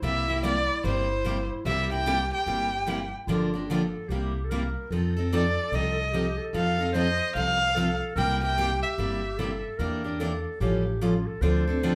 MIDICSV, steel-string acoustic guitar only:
0, 0, Header, 1, 2, 480
1, 0, Start_track
1, 0, Tempo, 407056
1, 29, Time_signature, 4, 2, 24, 8
1, 14091, End_track
2, 0, Start_track
2, 0, Title_t, "Steel-string acoustic guitar"
2, 0, Program_c, 0, 25
2, 31, Note_on_c, 0, 48, 64
2, 36, Note_on_c, 0, 55, 75
2, 45, Note_on_c, 0, 58, 69
2, 48, Note_on_c, 0, 64, 69
2, 50, Note_on_c, 0, 67, 71
2, 281, Note_off_c, 0, 48, 0
2, 284, Note_off_c, 0, 55, 0
2, 288, Note_off_c, 0, 58, 0
2, 289, Note_off_c, 0, 64, 0
2, 291, Note_off_c, 0, 67, 0
2, 332, Note_on_c, 0, 67, 52
2, 346, Note_on_c, 0, 64, 53
2, 360, Note_on_c, 0, 58, 44
2, 504, Note_off_c, 0, 67, 0
2, 507, Note_off_c, 0, 58, 0
2, 511, Note_off_c, 0, 64, 0
2, 512, Note_on_c, 0, 48, 85
2, 516, Note_on_c, 0, 55, 88
2, 521, Note_on_c, 0, 58, 89
2, 526, Note_on_c, 0, 64, 79
2, 527, Note_on_c, 0, 67, 88
2, 644, Note_off_c, 0, 48, 0
2, 646, Note_off_c, 0, 55, 0
2, 648, Note_off_c, 0, 58, 0
2, 651, Note_off_c, 0, 64, 0
2, 651, Note_off_c, 0, 67, 0
2, 991, Note_on_c, 0, 48, 67
2, 997, Note_on_c, 0, 55, 65
2, 1000, Note_on_c, 0, 58, 65
2, 1001, Note_on_c, 0, 64, 63
2, 1006, Note_on_c, 0, 67, 74
2, 1242, Note_off_c, 0, 48, 0
2, 1245, Note_off_c, 0, 55, 0
2, 1246, Note_off_c, 0, 58, 0
2, 1247, Note_off_c, 0, 64, 0
2, 1249, Note_off_c, 0, 67, 0
2, 1468, Note_on_c, 0, 48, 75
2, 1476, Note_on_c, 0, 55, 73
2, 1478, Note_on_c, 0, 58, 73
2, 1481, Note_on_c, 0, 64, 72
2, 1487, Note_on_c, 0, 67, 87
2, 1602, Note_off_c, 0, 48, 0
2, 1606, Note_off_c, 0, 55, 0
2, 1607, Note_off_c, 0, 58, 0
2, 1609, Note_off_c, 0, 64, 0
2, 1612, Note_off_c, 0, 67, 0
2, 1951, Note_on_c, 0, 48, 64
2, 1959, Note_on_c, 0, 58, 67
2, 1960, Note_on_c, 0, 55, 71
2, 1965, Note_on_c, 0, 64, 82
2, 1965, Note_on_c, 0, 67, 77
2, 2202, Note_off_c, 0, 48, 0
2, 2206, Note_off_c, 0, 55, 0
2, 2206, Note_off_c, 0, 58, 0
2, 2209, Note_off_c, 0, 64, 0
2, 2209, Note_off_c, 0, 67, 0
2, 2253, Note_on_c, 0, 67, 53
2, 2266, Note_on_c, 0, 64, 57
2, 2278, Note_on_c, 0, 58, 49
2, 2425, Note_off_c, 0, 67, 0
2, 2429, Note_off_c, 0, 64, 0
2, 2430, Note_off_c, 0, 58, 0
2, 2431, Note_on_c, 0, 48, 91
2, 2440, Note_on_c, 0, 55, 91
2, 2443, Note_on_c, 0, 64, 98
2, 2444, Note_on_c, 0, 58, 93
2, 2448, Note_on_c, 0, 67, 93
2, 2564, Note_off_c, 0, 48, 0
2, 2568, Note_off_c, 0, 55, 0
2, 2570, Note_off_c, 0, 58, 0
2, 2570, Note_off_c, 0, 64, 0
2, 2572, Note_off_c, 0, 67, 0
2, 2909, Note_on_c, 0, 48, 63
2, 2913, Note_on_c, 0, 55, 59
2, 2917, Note_on_c, 0, 58, 59
2, 2923, Note_on_c, 0, 67, 64
2, 2925, Note_on_c, 0, 64, 61
2, 3161, Note_off_c, 0, 48, 0
2, 3163, Note_off_c, 0, 55, 0
2, 3166, Note_off_c, 0, 58, 0
2, 3168, Note_off_c, 0, 67, 0
2, 3169, Note_off_c, 0, 64, 0
2, 3381, Note_on_c, 0, 48, 73
2, 3384, Note_on_c, 0, 55, 68
2, 3390, Note_on_c, 0, 58, 88
2, 3397, Note_on_c, 0, 64, 83
2, 3399, Note_on_c, 0, 67, 71
2, 3519, Note_off_c, 0, 48, 0
2, 3521, Note_off_c, 0, 55, 0
2, 3524, Note_off_c, 0, 58, 0
2, 3527, Note_off_c, 0, 64, 0
2, 3528, Note_off_c, 0, 67, 0
2, 3869, Note_on_c, 0, 50, 64
2, 3880, Note_on_c, 0, 53, 73
2, 3881, Note_on_c, 0, 58, 75
2, 3881, Note_on_c, 0, 62, 70
2, 3888, Note_on_c, 0, 67, 77
2, 4121, Note_off_c, 0, 50, 0
2, 4127, Note_off_c, 0, 53, 0
2, 4128, Note_off_c, 0, 58, 0
2, 4128, Note_off_c, 0, 62, 0
2, 4131, Note_off_c, 0, 67, 0
2, 4170, Note_on_c, 0, 67, 50
2, 4186, Note_on_c, 0, 62, 50
2, 4196, Note_on_c, 0, 58, 42
2, 4344, Note_off_c, 0, 67, 0
2, 4352, Note_off_c, 0, 62, 0
2, 4357, Note_off_c, 0, 58, 0
2, 4361, Note_on_c, 0, 50, 76
2, 4371, Note_on_c, 0, 53, 85
2, 4373, Note_on_c, 0, 58, 83
2, 4376, Note_on_c, 0, 62, 86
2, 4378, Note_on_c, 0, 67, 85
2, 4490, Note_off_c, 0, 50, 0
2, 4494, Note_off_c, 0, 53, 0
2, 4495, Note_off_c, 0, 58, 0
2, 4497, Note_off_c, 0, 62, 0
2, 4498, Note_off_c, 0, 67, 0
2, 4839, Note_on_c, 0, 48, 62
2, 4847, Note_on_c, 0, 55, 57
2, 4849, Note_on_c, 0, 58, 63
2, 4853, Note_on_c, 0, 67, 68
2, 4856, Note_on_c, 0, 64, 61
2, 5087, Note_off_c, 0, 48, 0
2, 5090, Note_off_c, 0, 55, 0
2, 5092, Note_off_c, 0, 58, 0
2, 5094, Note_off_c, 0, 67, 0
2, 5095, Note_off_c, 0, 64, 0
2, 5318, Note_on_c, 0, 48, 74
2, 5323, Note_on_c, 0, 55, 72
2, 5326, Note_on_c, 0, 58, 82
2, 5330, Note_on_c, 0, 64, 72
2, 5339, Note_on_c, 0, 67, 69
2, 5448, Note_off_c, 0, 48, 0
2, 5451, Note_off_c, 0, 55, 0
2, 5452, Note_off_c, 0, 58, 0
2, 5454, Note_off_c, 0, 64, 0
2, 5458, Note_off_c, 0, 67, 0
2, 5801, Note_on_c, 0, 53, 58
2, 5806, Note_on_c, 0, 60, 64
2, 5809, Note_on_c, 0, 63, 65
2, 5817, Note_on_c, 0, 69, 60
2, 6048, Note_off_c, 0, 53, 0
2, 6050, Note_off_c, 0, 60, 0
2, 6052, Note_off_c, 0, 63, 0
2, 6056, Note_off_c, 0, 69, 0
2, 6092, Note_on_c, 0, 69, 56
2, 6113, Note_on_c, 0, 63, 52
2, 6118, Note_on_c, 0, 60, 46
2, 6265, Note_off_c, 0, 69, 0
2, 6272, Note_off_c, 0, 60, 0
2, 6276, Note_off_c, 0, 63, 0
2, 6280, Note_on_c, 0, 53, 82
2, 6286, Note_on_c, 0, 60, 85
2, 6291, Note_on_c, 0, 69, 81
2, 6292, Note_on_c, 0, 63, 99
2, 6409, Note_off_c, 0, 53, 0
2, 6412, Note_off_c, 0, 60, 0
2, 6414, Note_off_c, 0, 69, 0
2, 6415, Note_off_c, 0, 63, 0
2, 6750, Note_on_c, 0, 53, 56
2, 6756, Note_on_c, 0, 60, 72
2, 6766, Note_on_c, 0, 63, 64
2, 6770, Note_on_c, 0, 69, 67
2, 7002, Note_off_c, 0, 53, 0
2, 7005, Note_off_c, 0, 60, 0
2, 7010, Note_off_c, 0, 63, 0
2, 7012, Note_off_c, 0, 69, 0
2, 7235, Note_on_c, 0, 53, 72
2, 7243, Note_on_c, 0, 60, 73
2, 7245, Note_on_c, 0, 63, 86
2, 7251, Note_on_c, 0, 69, 73
2, 7366, Note_off_c, 0, 53, 0
2, 7371, Note_off_c, 0, 60, 0
2, 7372, Note_off_c, 0, 63, 0
2, 7374, Note_off_c, 0, 69, 0
2, 7714, Note_on_c, 0, 53, 66
2, 7715, Note_on_c, 0, 60, 62
2, 7720, Note_on_c, 0, 63, 68
2, 7725, Note_on_c, 0, 69, 72
2, 7964, Note_off_c, 0, 53, 0
2, 7965, Note_off_c, 0, 60, 0
2, 7967, Note_off_c, 0, 63, 0
2, 7970, Note_off_c, 0, 69, 0
2, 8003, Note_on_c, 0, 69, 49
2, 8022, Note_on_c, 0, 63, 53
2, 8034, Note_on_c, 0, 60, 44
2, 8181, Note_off_c, 0, 60, 0
2, 8181, Note_off_c, 0, 69, 0
2, 8186, Note_off_c, 0, 63, 0
2, 8186, Note_on_c, 0, 53, 81
2, 8195, Note_on_c, 0, 60, 80
2, 8200, Note_on_c, 0, 63, 83
2, 8206, Note_on_c, 0, 69, 97
2, 8322, Note_off_c, 0, 53, 0
2, 8326, Note_off_c, 0, 60, 0
2, 8329, Note_off_c, 0, 63, 0
2, 8332, Note_off_c, 0, 69, 0
2, 8675, Note_on_c, 0, 53, 66
2, 8678, Note_on_c, 0, 60, 60
2, 8684, Note_on_c, 0, 63, 73
2, 8688, Note_on_c, 0, 69, 65
2, 8925, Note_off_c, 0, 53, 0
2, 8926, Note_off_c, 0, 60, 0
2, 8929, Note_off_c, 0, 63, 0
2, 8931, Note_off_c, 0, 69, 0
2, 9150, Note_on_c, 0, 53, 73
2, 9163, Note_on_c, 0, 63, 88
2, 9164, Note_on_c, 0, 60, 73
2, 9172, Note_on_c, 0, 69, 87
2, 9284, Note_off_c, 0, 53, 0
2, 9290, Note_off_c, 0, 63, 0
2, 9291, Note_off_c, 0, 60, 0
2, 9295, Note_off_c, 0, 69, 0
2, 9631, Note_on_c, 0, 48, 61
2, 9633, Note_on_c, 0, 55, 62
2, 9639, Note_on_c, 0, 58, 67
2, 9644, Note_on_c, 0, 67, 76
2, 9645, Note_on_c, 0, 64, 79
2, 9882, Note_off_c, 0, 48, 0
2, 9883, Note_off_c, 0, 55, 0
2, 9886, Note_off_c, 0, 58, 0
2, 9889, Note_off_c, 0, 64, 0
2, 9889, Note_off_c, 0, 67, 0
2, 9930, Note_on_c, 0, 67, 50
2, 9944, Note_on_c, 0, 64, 50
2, 9962, Note_on_c, 0, 58, 40
2, 10104, Note_off_c, 0, 67, 0
2, 10105, Note_off_c, 0, 58, 0
2, 10111, Note_off_c, 0, 64, 0
2, 10116, Note_on_c, 0, 48, 80
2, 10116, Note_on_c, 0, 55, 72
2, 10119, Note_on_c, 0, 58, 85
2, 10123, Note_on_c, 0, 64, 83
2, 10131, Note_on_c, 0, 67, 104
2, 10246, Note_off_c, 0, 55, 0
2, 10247, Note_off_c, 0, 48, 0
2, 10248, Note_off_c, 0, 58, 0
2, 10250, Note_off_c, 0, 64, 0
2, 10254, Note_off_c, 0, 67, 0
2, 10593, Note_on_c, 0, 48, 61
2, 10596, Note_on_c, 0, 55, 60
2, 10604, Note_on_c, 0, 58, 63
2, 10607, Note_on_c, 0, 64, 67
2, 10608, Note_on_c, 0, 67, 63
2, 10842, Note_off_c, 0, 48, 0
2, 10844, Note_off_c, 0, 55, 0
2, 10848, Note_off_c, 0, 58, 0
2, 10850, Note_off_c, 0, 64, 0
2, 10850, Note_off_c, 0, 67, 0
2, 11070, Note_on_c, 0, 48, 69
2, 11070, Note_on_c, 0, 55, 73
2, 11072, Note_on_c, 0, 58, 67
2, 11080, Note_on_c, 0, 64, 71
2, 11084, Note_on_c, 0, 67, 81
2, 11203, Note_off_c, 0, 48, 0
2, 11203, Note_off_c, 0, 55, 0
2, 11204, Note_off_c, 0, 58, 0
2, 11208, Note_off_c, 0, 64, 0
2, 11210, Note_off_c, 0, 67, 0
2, 11550, Note_on_c, 0, 52, 73
2, 11557, Note_on_c, 0, 58, 64
2, 11560, Note_on_c, 0, 62, 67
2, 11568, Note_on_c, 0, 67, 65
2, 11800, Note_off_c, 0, 52, 0
2, 11804, Note_off_c, 0, 58, 0
2, 11806, Note_off_c, 0, 62, 0
2, 11809, Note_off_c, 0, 67, 0
2, 11842, Note_on_c, 0, 67, 49
2, 11853, Note_on_c, 0, 62, 50
2, 11867, Note_on_c, 0, 58, 40
2, 12018, Note_off_c, 0, 58, 0
2, 12019, Note_off_c, 0, 67, 0
2, 12024, Note_off_c, 0, 62, 0
2, 12027, Note_on_c, 0, 52, 79
2, 12032, Note_on_c, 0, 58, 78
2, 12037, Note_on_c, 0, 62, 84
2, 12041, Note_on_c, 0, 67, 89
2, 12160, Note_off_c, 0, 52, 0
2, 12163, Note_off_c, 0, 58, 0
2, 12166, Note_off_c, 0, 62, 0
2, 12167, Note_off_c, 0, 67, 0
2, 12510, Note_on_c, 0, 53, 64
2, 12516, Note_on_c, 0, 55, 65
2, 12523, Note_on_c, 0, 61, 64
2, 12526, Note_on_c, 0, 65, 59
2, 12530, Note_on_c, 0, 69, 62
2, 12760, Note_off_c, 0, 53, 0
2, 12762, Note_off_c, 0, 55, 0
2, 12766, Note_off_c, 0, 61, 0
2, 12768, Note_off_c, 0, 65, 0
2, 12769, Note_off_c, 0, 69, 0
2, 12988, Note_on_c, 0, 53, 75
2, 12992, Note_on_c, 0, 55, 65
2, 12997, Note_on_c, 0, 61, 80
2, 12997, Note_on_c, 0, 65, 72
2, 13000, Note_on_c, 0, 69, 88
2, 13120, Note_off_c, 0, 53, 0
2, 13122, Note_off_c, 0, 55, 0
2, 13125, Note_off_c, 0, 61, 0
2, 13125, Note_off_c, 0, 65, 0
2, 13126, Note_off_c, 0, 69, 0
2, 13466, Note_on_c, 0, 50, 62
2, 13470, Note_on_c, 0, 53, 70
2, 13474, Note_on_c, 0, 60, 75
2, 13475, Note_on_c, 0, 62, 79
2, 13482, Note_on_c, 0, 69, 79
2, 13716, Note_off_c, 0, 50, 0
2, 13718, Note_off_c, 0, 53, 0
2, 13720, Note_off_c, 0, 60, 0
2, 13721, Note_off_c, 0, 62, 0
2, 13724, Note_off_c, 0, 69, 0
2, 13767, Note_on_c, 0, 69, 54
2, 13783, Note_on_c, 0, 62, 52
2, 13794, Note_on_c, 0, 60, 43
2, 13939, Note_off_c, 0, 69, 0
2, 13941, Note_off_c, 0, 60, 0
2, 13947, Note_off_c, 0, 62, 0
2, 13952, Note_on_c, 0, 50, 78
2, 13955, Note_on_c, 0, 60, 87
2, 13956, Note_on_c, 0, 53, 86
2, 13960, Note_on_c, 0, 62, 96
2, 13964, Note_on_c, 0, 69, 78
2, 14081, Note_off_c, 0, 50, 0
2, 14082, Note_off_c, 0, 60, 0
2, 14083, Note_off_c, 0, 53, 0
2, 14085, Note_off_c, 0, 62, 0
2, 14087, Note_off_c, 0, 69, 0
2, 14091, End_track
0, 0, End_of_file